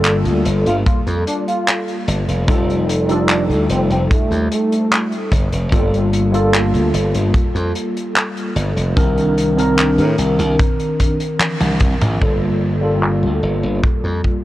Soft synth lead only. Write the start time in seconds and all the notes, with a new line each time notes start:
0.67 F4
0.86 F4
1.27 D4
1.48 F4
3.10 D4
3.30 D4
3.71 C4
3.91 C4
4.11 A3
4.52 A3